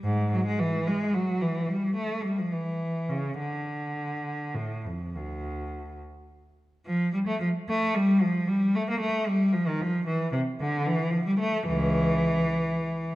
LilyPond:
\new Staff \with { instrumentName = "Cello" } { \clef bass \time 12/8 \key d \minor \tempo 4. = 74 << { gis,8 fis16 gis16 e8 gis8 fis8 e8 g8 a8 g16 f16 e4 cis8 | d2 a,8 f,8 d,4. r4. | f8 g16 a16 f8 a8 g8 f8 g8 a16 bes16 a8 g8 f16 ees16 f8 | e8 c8 d8 e8 f16 g16 a8 e2. | } \\ { r1. | r1. | r1. | r2. cis,4. r4. | } >> }